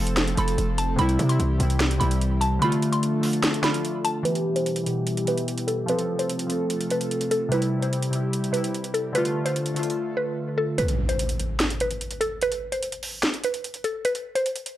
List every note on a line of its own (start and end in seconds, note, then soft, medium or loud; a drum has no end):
0.00 0.36 F1 loud
0.00 0.35 F3 loud
0.00 0.97 F3 medium
0.00 0.97 A3 medium
0.00 0.37 C4 loud
0.00 2.59 C4 medium
0.00 0.40 A4 loud
0.00 0.97 A4 medium
0.00 0.33 C6 medium
0.07 closed hi-hat medium
0.17 snare loud
0.17 closed hi-hat medium
0.28 closed hi-hat medium
0.35 0.57 F1 loud
0.35 0.83 F3 medium
0.35 0.84 C4 medium
0.35 0.76 B5 medium
0.35 closed hi-hat medium
0.40 0.85 A4 medium
0.48 closed hi-hat medium
0.58 0.97 F1 loud
0.58 closed hi-hat medium
0.78 0.95 A5 medium
0.78 closed hi-hat medium
0.96 1.18 C2 loud
0.96 1.21 C3 loud
0.96 2.60 E3 medium
0.96 1.22 G3 medium
0.96 2.60 G3 medium
0.96 2.60 G4 medium
0.96 1.28 B5 loud
0.96 closed hi-hat medium
1.01 1.23 E4 loud
1.09 closed hi-hat medium
1.19 1.39 C3 loud
1.19 closed hi-hat medium
1.26 1.51 C3 medium
1.26 1.52 G3 medium
1.26 1.97 C6 medium
1.26 closed hi-hat medium
1.31 1.54 E4 medium
1.40 1.59 C2 loud
1.40 closed hi-hat medium
1.58 1.99 C2 loud
1.58 1.90 C3 medium
1.58 1.91 G3 medium
1.58 closed hi-hat medium
1.63 1.93 E4 medium
1.70 closed hi-hat medium
1.80 snare loud
1.80 closed hi-hat medium
1.91 closed hi-hat medium
1.98 2.60 C2 loud
1.98 2.46 C3 medium
1.98 2.47 G3 medium
1.98 2.39 B5 medium
1.98 closed hi-hat medium
2.03 2.49 E4 medium
2.11 closed hi-hat medium
2.21 closed hi-hat medium
2.41 2.57 A5 medium
2.41 closed hi-hat medium
2.59 3.07 D3 medium
2.59 4.24 F3 medium
2.59 3.09 A3 loud
2.59 4.24 A3 medium
2.59 4.24 D4 medium
2.59 4.24 A4 medium
2.59 2.91 B5 loud
2.59 closed hi-hat medium
2.64 3.10 F4 loud
2.72 closed hi-hat medium
2.82 closed hi-hat medium
2.92 3.60 C6 medium
2.92 closed hi-hat medium
3.03 closed hi-hat medium
3.20 3.53 D3 medium
3.20 3.54 A3 medium
3.20 open hi-hat medium
3.26 3.55 F4 medium
3.33 closed hi-hat medium
3.43 snare loud
3.43 closed hi-hat medium
3.54 closed hi-hat medium
3.62 4.10 D3 medium
3.62 4.11 A3 medium
3.62 4.02 B5 medium
3.62 snare loud
3.62 closed hi-hat medium
3.67 4.12 F4 medium
3.74 closed hi-hat medium
3.85 closed hi-hat medium
4.05 4.21 A5 medium
4.05 closed hi-hat medium
4.23 5.87 B2 medium
4.23 4.47 E3 medium
4.23 5.87 G3 medium
4.23 4.49 B3 medium
4.23 5.87 E4 medium
4.23 5.87 G4 medium
4.23 4.54 B4 loud
4.23 closed hi-hat medium
4.28 4.50 G4 loud
4.35 closed hi-hat medium
4.53 4.78 E3 medium
4.53 4.79 B3 medium
4.53 5.23 C5 medium
4.53 closed hi-hat medium
4.58 4.80 G4 medium
4.66 closed hi-hat medium
4.76 closed hi-hat medium
4.84 5.17 B2 medium
4.84 5.16 E3 medium
4.84 closed hi-hat medium
4.89 5.19 G4 medium
5.07 closed hi-hat medium
5.17 closed hi-hat medium
5.25 5.73 E3 medium
5.25 5.74 B3 medium
5.25 5.66 B4 medium
5.25 closed hi-hat medium
5.30 5.75 G4 medium
5.38 closed hi-hat medium
5.48 closed hi-hat medium
5.58 closed hi-hat medium
5.68 5.84 A4 medium
5.68 closed hi-hat medium
5.86 9.12 C3 medium
5.86 6.11 F3 loud
5.86 7.50 A3 medium
5.86 6.12 C4 medium
5.86 7.50 F4 medium
5.86 7.50 A4 medium
5.86 6.18 B4 loud
5.86 closed hi-hat medium
5.91 6.13 A4 loud
5.99 closed hi-hat medium
6.16 6.41 F3 medium
6.16 6.42 C4 medium
6.16 6.86 C5 medium
6.16 closed hi-hat medium
6.21 6.44 A4 medium
6.29 closed hi-hat medium
6.39 closed hi-hat medium
6.47 7.10 F3 medium
6.47 7.12 C4 medium
6.47 closed hi-hat medium
6.52 7.13 A4 medium
6.70 closed hi-hat medium
6.81 closed hi-hat medium
6.90 7.29 B4 medium
6.90 closed hi-hat medium
7.01 closed hi-hat medium
7.11 closed hi-hat medium
7.21 closed hi-hat medium
7.31 7.48 A4 medium
7.31 closed hi-hat medium
7.49 7.74 C3 medium
7.49 7.75 G3 medium
7.49 9.13 G3 medium
7.49 9.13 E4 medium
7.49 9.13 G4 medium
7.49 7.81 B4 loud
7.49 closed hi-hat medium
7.54 7.76 E4 loud
7.62 closed hi-hat medium
7.80 8.04 C3 medium
7.80 8.06 G3 medium
7.80 8.50 C5 medium
7.80 closed hi-hat medium
7.85 8.07 E4 medium
7.93 closed hi-hat medium
8.03 closed hi-hat medium
8.10 8.43 C3 medium
8.10 8.44 G3 medium
8.10 closed hi-hat medium
8.15 8.45 E4 medium
8.33 closed hi-hat medium
8.44 closed hi-hat medium
8.52 8.99 C3 medium
8.52 9.01 G3 medium
8.52 8.92 B4 medium
8.52 closed hi-hat medium
8.57 9.02 E4 medium
8.64 closed hi-hat medium
8.75 closed hi-hat medium
8.84 closed hi-hat medium
8.94 9.11 A4 medium
8.94 closed hi-hat medium
9.13 9.37 D3 loud
9.13 10.77 D3 medium
9.13 10.77 A3 medium
9.13 9.38 A3 medium
9.13 10.77 F4 medium
9.13 10.77 A4 medium
9.13 9.44 B4 loud
9.13 closed hi-hat medium
9.18 9.40 F4 loud
9.25 closed hi-hat medium
9.43 9.68 D3 medium
9.43 9.69 A3 medium
9.43 10.13 C5 medium
9.43 closed hi-hat medium
9.48 9.70 F4 medium
9.56 closed hi-hat medium
9.66 closed hi-hat medium
9.74 10.37 D3 medium
9.74 10.39 A3 medium
9.74 closed hi-hat medium
9.79 10.40 F4 medium
9.79 closed hi-hat medium
9.90 closed hi-hat soft
10.17 10.55 B4 medium
10.58 10.74 A4 medium
10.78 11.07 B4 loud
10.78 closed hi-hat medium
10.78 impact medium
10.88 closed hi-hat medium
11.09 11.76 C5 medium
11.09 closed hi-hat medium
11.19 closed hi-hat medium
11.29 closed hi-hat medium
11.40 closed hi-hat medium
11.60 snare loud
11.60 closed hi-hat medium
11.70 closed hi-hat medium
11.80 12.19 B4 medium
11.80 closed hi-hat medium
11.91 closed hi-hat medium
12.01 closed hi-hat medium
12.11 closed hi-hat medium
12.21 12.37 A4 medium
12.21 closed hi-hat medium
12.41 12.71 B4 loud
12.41 closed hi-hat medium
12.52 closed hi-hat medium
12.72 13.40 C5 medium
12.72 closed hi-hat medium
12.83 closed hi-hat medium
12.92 closed hi-hat medium
13.03 open hi-hat medium
13.23 snare loud
13.23 closed hi-hat medium
13.34 closed hi-hat medium
13.44 13.82 B4 medium
13.44 closed hi-hat medium
13.54 closed hi-hat medium
13.64 closed hi-hat medium
13.74 closed hi-hat medium
13.84 14.01 A4 medium
13.84 closed hi-hat medium
14.05 14.34 B4 loud
14.05 closed hi-hat medium
14.15 closed hi-hat medium
14.35 14.77 C5 medium
14.35 closed hi-hat medium
14.46 closed hi-hat medium
14.56 closed hi-hat medium
14.66 closed hi-hat medium